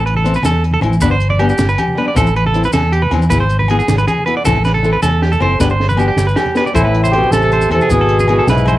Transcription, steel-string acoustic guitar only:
0.24 0.36 E3 medium
0.24 0.36 C4 medium
0.24 0.37 E4 medium
0.81 0.93 E3 medium
0.81 0.94 C4 medium
0.81 0.95 E4 medium
1.01 1.13 G3 medium
1.01 1.13 B3 medium
1.01 1.13 D4 medium
1.39 1.51 G3 medium
1.39 1.51 B3 medium
1.39 1.52 D4 medium
1.95 2.07 G3 medium
1.95 2.08 B3 medium
1.95 2.09 D4 medium
2.14 2.27 E3 medium
2.14 2.27 C4 medium
2.14 2.28 E4 medium
2.53 2.65 E3 medium
2.53 2.66 C4 medium
2.53 2.66 E4 medium
3.11 3.23 E3 medium
3.11 3.23 C4 medium
3.11 3.24 E4 medium
3.30 3.42 B3 medium
3.30 3.42 E4 medium
3.30 3.43 G#4 medium
3.69 3.80 B3 medium
3.69 3.81 E4 medium
3.69 3.81 G#4 medium
4.26 4.37 B3 medium
4.26 4.38 E4 medium
4.26 muted steel-string acoustic guitar stroke medium
4.44 4.56 E3 medium
4.44 4.57 C4 medium
4.44 4.57 E4 medium
4.44 4.57 A4 medium
4.82 4.94 E3 medium
4.82 4.95 C4 medium
4.82 4.95 E4 medium
4.82 4.96 A4 medium
5.40 5.52 C4 medium
5.40 5.53 E4 medium
5.40 5.53 A4 medium
5.59 5.71 B3 medium
5.59 5.72 D4 medium
5.59 5.72 G4 medium
5.97 6.09 B3 medium
5.97 6.10 D4 medium
5.97 6.11 G4 medium
6.55 6.67 B3 medium
6.55 6.67 D4 medium
6.55 6.68 G4 medium
6.73 6.86 E3 medium
6.73 6.86 C4 medium
6.73 6.86 E4 medium
6.73 6.87 A4 medium
7.12 7.25 C4 medium
7.12 7.25 E4 medium
7.12 7.26 A4 medium
7.12 muted steel-string acoustic guitar stroke medium
7.69 7.82 E3 soft
7.69 7.82 C4 medium
7.69 7.83 E4 medium
7.90 8.02 B3 medium
7.90 8.02 E4 medium
7.90 8.03 G#4 medium
8.28 8.40 B3 medium
8.28 8.40 E4 medium
8.28 8.41 G#4 medium

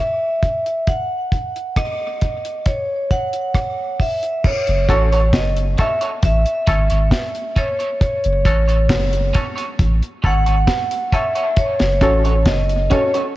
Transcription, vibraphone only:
0.00 0.91 E5 medium
0.88 1.80 F#5 medium
1.77 2.69 D#5 medium
2.66 3.96 C#5 medium
3.11 4.03 F#5 loud
4.01 4.42 E5 medium
4.46 5.30 C#5 medium
5.35 5.55 D#5 medium
5.80 6.00 E5 medium
6.25 7.61 E5 medium
7.58 8.01 C#5 medium
8.02 9.31 C#5 medium
10.26 11.17 F#5 loud
11.14 11.60 E5 loud
11.58 12.50 C#5 medium
12.47 12.93 D#5 medium
12.92 13.12 C#5 medium

